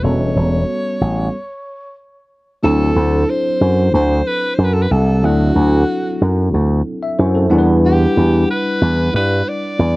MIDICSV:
0, 0, Header, 1, 4, 480
1, 0, Start_track
1, 0, Tempo, 650759
1, 23, Time_signature, 4, 2, 24, 8
1, 7349, End_track
2, 0, Start_track
2, 0, Title_t, "Alto saxophone"
2, 0, Program_c, 0, 65
2, 25, Note_on_c, 0, 73, 95
2, 1465, Note_off_c, 0, 73, 0
2, 1944, Note_on_c, 0, 69, 106
2, 2431, Note_on_c, 0, 72, 100
2, 2442, Note_off_c, 0, 69, 0
2, 2905, Note_off_c, 0, 72, 0
2, 2909, Note_on_c, 0, 72, 104
2, 3149, Note_on_c, 0, 71, 106
2, 3160, Note_off_c, 0, 72, 0
2, 3353, Note_on_c, 0, 72, 84
2, 3364, Note_off_c, 0, 71, 0
2, 3424, Note_on_c, 0, 71, 83
2, 3435, Note_off_c, 0, 72, 0
2, 3491, Note_on_c, 0, 69, 92
2, 3502, Note_off_c, 0, 71, 0
2, 3556, Note_on_c, 0, 71, 87
2, 3567, Note_off_c, 0, 69, 0
2, 3626, Note_on_c, 0, 69, 86
2, 3637, Note_off_c, 0, 71, 0
2, 3873, Note_on_c, 0, 66, 96
2, 3884, Note_off_c, 0, 69, 0
2, 4827, Note_off_c, 0, 66, 0
2, 5793, Note_on_c, 0, 67, 98
2, 6238, Note_off_c, 0, 67, 0
2, 6271, Note_on_c, 0, 71, 99
2, 6717, Note_off_c, 0, 71, 0
2, 6755, Note_on_c, 0, 71, 117
2, 6994, Note_on_c, 0, 74, 119
2, 7005, Note_off_c, 0, 71, 0
2, 7349, Note_off_c, 0, 74, 0
2, 7349, End_track
3, 0, Start_track
3, 0, Title_t, "Tine electric piano"
3, 0, Program_c, 1, 4
3, 0, Control_c, 1, 64, 127
3, 18, Note_on_c, 1, 55, 57
3, 22, Note_on_c, 1, 59, 58
3, 28, Note_on_c, 1, 61, 52
3, 31, Control_c, 1, 64, 0
3, 32, Note_on_c, 1, 66, 55
3, 36, Note_on_c, 1, 69, 71
3, 142, Control_c, 1, 64, 127
3, 962, Note_off_c, 1, 55, 0
3, 964, Note_off_c, 1, 59, 0
3, 967, Note_off_c, 1, 61, 0
3, 969, Note_off_c, 1, 66, 0
3, 971, Note_off_c, 1, 69, 0
3, 993, Control_c, 1, 64, 0
3, 1938, Note_on_c, 1, 54, 68
3, 1942, Note_on_c, 1, 60, 60
3, 1947, Note_on_c, 1, 62, 61
3, 1950, Note_on_c, 1, 64, 59
3, 1956, Note_on_c, 1, 69, 69
3, 2094, Control_c, 1, 64, 127
3, 3830, Note_off_c, 1, 54, 0
3, 3833, Note_off_c, 1, 60, 0
3, 3835, Note_off_c, 1, 62, 0
3, 3837, Note_off_c, 1, 64, 0
3, 3840, Note_off_c, 1, 69, 0
3, 3857, Note_on_c, 1, 54, 72
3, 3861, Note_on_c, 1, 60, 62
3, 3865, Note_on_c, 1, 62, 60
3, 3869, Note_on_c, 1, 64, 62
3, 3874, Note_on_c, 1, 69, 65
3, 5037, Note_off_c, 1, 60, 0
3, 5039, Note_off_c, 1, 62, 0
3, 5041, Note_off_c, 1, 64, 0
3, 5044, Note_off_c, 1, 69, 0
3, 5182, Note_on_c, 1, 76, 66
3, 5296, Note_off_c, 1, 76, 0
3, 5301, Note_on_c, 1, 72, 69
3, 5306, Note_on_c, 1, 64, 55
3, 5416, Note_off_c, 1, 72, 0
3, 5418, Note_off_c, 1, 64, 0
3, 5419, Note_on_c, 1, 69, 69
3, 5421, Note_on_c, 1, 60, 53
3, 5509, Note_off_c, 1, 54, 0
3, 5529, Note_on_c, 1, 55, 81
3, 5533, Note_on_c, 1, 62, 75
3, 5536, Note_on_c, 1, 64, 76
3, 5540, Note_on_c, 1, 78, 76
3, 5546, Note_on_c, 1, 70, 68
3, 5553, Control_c, 1, 64, 0
3, 5592, Note_off_c, 1, 70, 0
3, 5594, Note_on_c, 1, 71, 89
3, 5648, Note_off_c, 1, 69, 0
3, 5650, Note_off_c, 1, 60, 0
3, 5701, Control_c, 1, 64, 127
3, 7349, Note_off_c, 1, 55, 0
3, 7349, Note_off_c, 1, 62, 0
3, 7349, Note_off_c, 1, 64, 0
3, 7349, Note_off_c, 1, 71, 0
3, 7349, Note_off_c, 1, 78, 0
3, 7349, End_track
4, 0, Start_track
4, 0, Title_t, "Slap bass"
4, 0, Program_c, 2, 36
4, 28, Note_on_c, 2, 28, 96
4, 224, Note_off_c, 2, 28, 0
4, 265, Note_on_c, 2, 28, 93
4, 463, Note_off_c, 2, 28, 0
4, 745, Note_on_c, 2, 33, 77
4, 943, Note_off_c, 2, 33, 0
4, 1945, Note_on_c, 2, 38, 104
4, 2143, Note_off_c, 2, 38, 0
4, 2183, Note_on_c, 2, 38, 98
4, 2382, Note_off_c, 2, 38, 0
4, 2662, Note_on_c, 2, 42, 93
4, 2861, Note_off_c, 2, 42, 0
4, 2903, Note_on_c, 2, 38, 111
4, 3102, Note_off_c, 2, 38, 0
4, 3380, Note_on_c, 2, 42, 94
4, 3580, Note_off_c, 2, 42, 0
4, 3621, Note_on_c, 2, 36, 91
4, 3861, Note_off_c, 2, 36, 0
4, 3861, Note_on_c, 2, 38, 111
4, 4060, Note_off_c, 2, 38, 0
4, 4098, Note_on_c, 2, 38, 107
4, 4298, Note_off_c, 2, 38, 0
4, 4583, Note_on_c, 2, 42, 87
4, 4781, Note_off_c, 2, 42, 0
4, 4823, Note_on_c, 2, 38, 113
4, 5021, Note_off_c, 2, 38, 0
4, 5303, Note_on_c, 2, 42, 96
4, 5501, Note_off_c, 2, 42, 0
4, 5545, Note_on_c, 2, 40, 91
4, 5940, Note_off_c, 2, 40, 0
4, 6025, Note_on_c, 2, 40, 91
4, 6222, Note_off_c, 2, 40, 0
4, 6501, Note_on_c, 2, 40, 94
4, 6700, Note_off_c, 2, 40, 0
4, 6743, Note_on_c, 2, 43, 112
4, 6940, Note_off_c, 2, 43, 0
4, 7221, Note_on_c, 2, 40, 85
4, 7349, Note_off_c, 2, 40, 0
4, 7349, End_track
0, 0, End_of_file